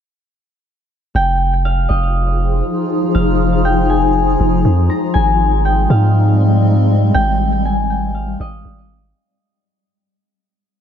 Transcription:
1.15 808-style bass F1, ambient pad F3 D#4 F4 G#4, harp G5
1.65 harp F5
1.89 808-style bass F1, harp D#5
3.15 808-style bass F1, harp F5
3.65 harp G5
3.90 harp G#5
4.40 808-style bass F1
4.65 808-style bass F2
4.90 harp A#5
5.14 808-style bass G#1, ambient pad G3 G#3 C4, harp G#5
5.65 harp G5
5.90 808-style bass G#2, harp F5
7.14 808-style bass G#1, harp G5
7.65 harp G#5
7.90 harp G5
8.15 harp F5
8.40 808-style bass G#1, harp D#5
8.65 808-style bass G#1

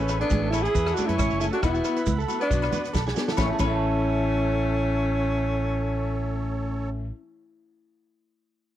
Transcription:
Already playing: fingered electric bass A1, tenor saxophone A3, alto saxophone C#4, accordion C#5 E5 G#5
0.00 clean electric guitar B4
0.08 steel-string acoustic guitar C#4 G#4, muted steel-string acoustic guitar stroke, cross-stick, closed hi-hat, low agogo, shekere
0.19 tenor saxophone B3, alto saxophone D4, clean electric guitar A4, closed hi-hat
0.30 fingered electric bass A1, clean electric guitar G#4, kick, closed hi-hat, high conga, shekere
0.43 clean electric guitar A4
0.50 tenor saxophone C#4, alto saxophone E4, steel-string acoustic guitar G#4, cross-stick, closed hi-hat, low agogo, shekere
0.55 steel-string acoustic guitar A3 C#4, muted conga
0.62 tenor saxophone E4, alto saxophone G#4, clean electric guitar G#4, closed hi-hat, shekere
0.74 fingered electric bass E2, clean electric guitar B4, kick, closed hi-hat, muted conga, shekere
0.86 clean electric guitar A4, cross-stick, low agogo, shekere
0.94 tenor saxophone D4, alto saxophone F#4, closed hi-hat, shekere
0.99 steel-string acoustic guitar A3 C#4 G#4, muted conga, high conga
1.06 fingered electric bass F#2, tenor saxophone C#4, alto saxophone E4, clean electric guitar B4, closed hi-hat, shekere
1.18 fingered electric bass A1, clean electric guitar C#5, kick, cross-stick, closed hi-hat, high conga, low agogo, shekere
1.30 fingered electric bass F#1, clean electric guitar C#5, shekere
1.40 tenor saxophone C#4, steel-string acoustic guitar C#4 G#4, alto saxophone E4, clean electric guitar A4, closed hi-hat, shekere
1.45 steel-string acoustic guitar A3
1.51 tenor saxophone D4, alto saxophone F#4, clean electric guitar A4, closed hi-hat
1.62 fingered electric bass E1, steel-string acoustic guitar E3 B3 E4 F#4, tenor saxophone B3, alto saxophone E4, clean electric guitar F#4, accordion E5 F#5 B5, kick, cross-stick, closed hi-hat, muted conga, low agogo, shekere
1.74 clean electric guitar F#4, shekere
1.84 steel-string acoustic guitar E4 F#4, muted clean electric guitar stroke, cross-stick, closed hi-hat, low agogo, shekere
1.89 steel-string acoustic guitar B3
1.96 clean electric guitar B4, closed hi-hat, shekere
2.06 fingered electric bass C#2, kick, closed hi-hat, high conga, shekere
2.18 clean electric guitar A4, shekere
2.28 steel-string acoustic guitar B3 E4 F#4, closed hi-hat, muted conga, low agogo, shekere
2.40 tenor saxophone B3, alto saxophone D4, clean electric guitar B4, closed hi-hat, shekere
2.50 fingered electric bass B1, steel-string acoustic guitar F#3 B3 D4 F#4, accordion D5, muted clean electric guitar stroke, kick, closed hi-hat, muted conga, low conga, shekere
2.62 cross-stick, low agogo
2.71 steel-string acoustic guitar B3 D4 F#4, clean electric guitar B4, closed hi-hat, high conga, low conga, shekere
2.84 closed hi-hat, shekere
2.93 fingered electric bass B1, clean electric guitar A4, kick, snare, high conga, low agogo, shekere
3.06 clean electric guitar G#4, snare, shekere
3.14 steel-string acoustic guitar B3 D4 F#4, snare, shekere
3.28 clean electric guitar A4, snare, shekere
3.32 steel-string acoustic guitar E3
3.37 fingered electric bass A1, tenor saxophone A3, steel-string acoustic guitar A3, alto saxophone C#4, accordion A4 C#5, kick, snare, muted conga, low agogo, shekere
3.42 clean electric guitar C#5 E5
3.46 steel-string acoustic guitar C#4, clean electric guitar A5
3.53 steel-string acoustic guitar E3 G#4
3.59 fingered electric bass A1, steel-string acoustic guitar A3, tenor saxophone A3, alto saxophone C#4, kick, crash, muted conga, low agogo, shekere
3.64 steel-string acoustic guitar C#4, clean electric guitar C#5 E5
3.72 clean electric guitar A5

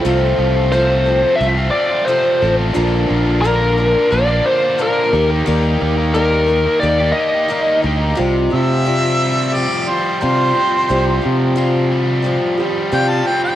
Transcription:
0.01 overdriven electric guitar C3 F3, reed electric piano F4 A4 C5
0.05 fingered electric bass C2, steel-string acoustic guitar C3 F3 C4 F4 A4, overdriven electric guitar A3 C4 F4
0.38 fingered electric bass C2, overdriven electric guitar F3 A3 C4 F4
0.55 overdriven electric guitar A3 C4 F4
0.71 overdriven electric guitar C3 F3 A3 C4 F4, steel-string acoustic guitar C3 F3 C4 F4 A4, lead electric guitar C5
1.05 steel-string acoustic guitar C4 F4 A4
1.22 overdriven electric guitar A3 C4 F4
1.35 lead electric guitar E5
1.40 fingered electric bass C2, steel-string acoustic guitar F3 C4 F4 A4
1.56 overdriven electric guitar A3 C4 F4
1.71 overdriven electric guitar F3 A3, lead electric guitar D5
1.75 overdriven electric guitar C4 F4
1.90 overdriven electric guitar A3 C4 F4
2.05 overdriven electric guitar C3 F3 A3 C4 F4, steel-string acoustic guitar C3 F3, lead electric guitar C5
2.09 steel-string acoustic guitar C4 F4 A4
2.40 fingered electric bass A1, overdriven electric guitar F3 A3 C4 F4, steel-string acoustic guitar F4 A4
2.45 steel-string acoustic guitar C4
2.57 overdriven electric guitar A3 C4 F4
2.74 fingered electric bass A#1, overdriven electric guitar A#2 D3 A#3 D4 F4, steel-string acoustic guitar A#2 D3 F3 A#3 D4 A#4, reed electric piano D4 F4 A#4
3.07 fingered electric bass A#1, overdriven electric guitar D3 A#3 D4 F4
3.24 overdriven electric guitar A#3 D4 F4
3.41 overdriven electric guitar A#2 D3 A#3 D4 F4, steel-string acoustic guitar A#2 D3 F3, lead electric guitar A#4
3.45 steel-string acoustic guitar A#3 D4 A#4
3.77 steel-string acoustic guitar F3 A#3 D4 A#4
3.93 overdriven electric guitar A#3 D4 F4
4.11 fingered electric bass A#1, steel-string acoustic guitar F3 A#3 D4 A#4, lead electric guitar D5
4.27 overdriven electric guitar A#3 D4 F4
4.44 overdriven electric guitar D3 A#3 D4 F4, lead electric guitar C5
4.61 overdriven electric guitar A#3 D4 F4
4.76 overdriven electric guitar A#2 D3 A#3 D4 F4, steel-string acoustic guitar A#2 D3 F3 A#3 D4
4.81 steel-string acoustic guitar A#4, lead electric guitar A#4
5.12 fingered electric bass D#2, overdriven electric guitar D#3 A#3 D#4 G4, steel-string acoustic guitar A#3 D#4 A#4, reed electric piano D#4 G4 A#4
5.29 overdriven electric guitar A#3 D#4 G4
5.45 fingered electric bass D#2, overdriven electric guitar D#3 A#3 D#4 G4, steel-string acoustic guitar D#3 G3 A#3 D#4 A#4
5.80 fingered electric bass D#2, overdriven electric guitar D#3 A#3 D#4 G4
5.97 overdriven electric guitar A#3 D#4 G4
6.14 steel-string acoustic guitar D#3 G3 A#3 D#4 A#4, overdriven electric guitar D#3 A#3 D#4 G4, lead electric guitar A#4
6.46 steel-string acoustic guitar A#3 D#4 A#4
6.65 overdriven electric guitar A#3 D#4 G4
6.80 fingered electric bass D#2, steel-string acoustic guitar G3 A#3 D#4, lead electric guitar D5
6.84 steel-string acoustic guitar A#4
7.00 overdriven electric guitar A#3 D#4 G4
7.12 lead electric guitar D#5
7.17 overdriven electric guitar D#3 A#3 D#4 G4
7.34 overdriven electric guitar A#3 D#4 G4
7.48 steel-string acoustic guitar D#3 G3 A#3 D#4 A#4, overdriven electric guitar D#3 A#3
7.53 overdriven electric guitar D#4 G4
7.82 fingered electric bass D2, overdriven electric guitar D#3 A#3 D#4, steel-string acoustic guitar A#3 D#4 A#4
7.86 overdriven electric guitar G4
8.00 overdriven electric guitar A#3 D#4 G4
8.15 fingered electric bass C2, steel-string acoustic guitar C3 G3 C4 F4 G4, reed electric piano F4 G4 C5
8.20 overdriven electric guitar C3
8.50 fingered electric bass C3, overdriven electric guitar F3, steel-string acoustic guitar C4 F4 G4, harmonica E5
8.85 steel-string acoustic guitar C3 G3 C4 F4 G4, overdriven electric guitar C4
9.22 overdriven electric guitar G3
9.52 overdriven electric guitar F3, steel-string acoustic guitar G3 C4 F4 G4, harmonica D5
9.87 overdriven electric guitar G3, steel-string acoustic guitar C4 F4 G4, harmonica C5
10.21 steel-string acoustic guitar C3 G3 C4 F4 G4, fingered electric bass C3, overdriven electric guitar F4, harmonica C5
10.55 overdriven electric guitar C4, steel-string acoustic guitar C4 F4 G4
10.89 fingered electric bass C2, steel-string acoustic guitar C3 G3 C4 F4 G4, overdriven electric guitar C3, reed electric piano F4 G4 C5
11.22 fingered electric bass C3, overdriven electric guitar F3, steel-string acoustic guitar C4 F4 G4
11.55 steel-string acoustic guitar C3 G3 C4 F4 G4, overdriven electric guitar C4
11.92 overdriven electric guitar G3
12.22 overdriven electric guitar F3, steel-string acoustic guitar G3 C4 F4 G4
12.58 overdriven electric guitar G3, steel-string acoustic guitar C4 F4 G4, reed electric piano F4 G4 C5
12.92 steel-string acoustic guitar C3 G3 C4 F4 G4, fingered electric bass C3, overdriven electric guitar F4, harmonica G5
13.10 harmonica A5
13.26 overdriven electric guitar C4, steel-string acoustic guitar C4 F4 G4, harmonica G5
13.44 harmonica G5

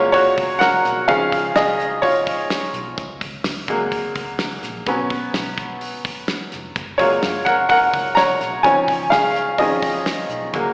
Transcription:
Already playing: fingered electric bass F#1, upright piano F#3 G#3 A#3 C#4 F4 A#4 C#5
0.12 upright piano F#4 C#5, kick, hi-hat pedal, open hi-hat
0.38 fingered electric bass C#2, kick, hi-hat pedal, open hi-hat
0.59 upright piano A#4 F#5, snare, hi-hat pedal, open hi-hat
0.85 fingered electric bass B1, snare, hi-hat pedal, open hi-hat
1.08 fingered electric bass C#2, upright piano D#3 F3 C#4 G#4 F5, kick, hi-hat pedal, open hi-hat
1.32 kick, hi-hat pedal, open hi-hat
1.55 fingered electric bass C#2, upright piano G#4 D#5, snare, hi-hat pedal, open hi-hat
1.80 hi-hat pedal, open hi-hat
2.02 upright piano F4 C#5, kick, hi-hat pedal, open hi-hat
2.27 kick, hi-hat pedal, open hi-hat
2.50 snare, hi-hat pedal, open hi-hat
2.73 fingered electric bass B1, hi-hat pedal, open hi-hat
2.98 fingered electric bass C#2, kick, hi-hat pedal, open hi-hat
3.21 kick, hi-hat pedal, open hi-hat
3.44 fingered electric bass C#2, snare, hi-hat pedal, open hi-hat
3.68 upright piano F#3 G#3 A#3, kick, hi-hat pedal, open hi-hat
3.92 kick, hi-hat pedal, open hi-hat
4.15 fingered electric bass C#2, kick, hi-hat pedal, open hi-hat
4.39 snare, hi-hat pedal, open hi-hat
4.63 fingered electric bass A#1, snare, hi-hat pedal, open hi-hat
4.86 fingered electric bass B1, upright piano F#3 B3 C#4, kick, hi-hat pedal, open hi-hat
5.10 kick, hi-hat pedal, open hi-hat
5.33 fingered electric bass B1, snare, hi-hat pedal, open hi-hat
5.58 kick, hi-hat pedal, open hi-hat
5.81 hi-hat pedal, open hi-hat
6.05 kick, hi-hat pedal, open hi-hat
6.28 snare, hi-hat pedal, open hi-hat
6.52 fingered electric bass F1, snare, hi-hat pedal, open hi-hat
6.75 fingered electric bass F#1, kick, hi-hat pedal, open hi-hat
6.98 upright piano F#3 G#3 A#3 F4 C#5, kick, hi-hat pedal, open hi-hat
7.23 fingered electric bass F#1, snare, hi-hat pedal, open hi-hat
7.45 upright piano A#4 F#5, kick, hi-hat pedal, open hi-hat
7.69 upright piano A#4 F#5, kick, hi-hat pedal, open hi-hat
7.93 fingered electric bass C#2, kick, hi-hat pedal, open hi-hat
8.15 upright piano C#5 A#5, snare, hi-hat pedal, open hi-hat
8.41 fingered electric bass B1, snare, hi-hat pedal, open hi-hat
8.63 fingered electric bass C#2, upright piano D#3 F3 C#4 C#5 G#5, kick, hi-hat pedal, open hi-hat
8.88 kick, hi-hat pedal, open hi-hat
9.10 fingered electric bass C#2, upright piano G#4 F5, snare, hi-hat pedal, open hi-hat
9.35 hi-hat pedal, open hi-hat
9.58 upright piano D#3 F3 C#4 G#4 D#5, kick, hi-hat pedal, open hi-hat
9.82 kick, hi-hat pedal, open hi-hat
10.06 snare, hi-hat pedal, open hi-hat
10.29 fingered electric bass B1, hi-hat pedal, open hi-hat
10.53 fingered electric bass C#2, upright piano F#3 G#3 A#3, kick, hi-hat pedal, open hi-hat

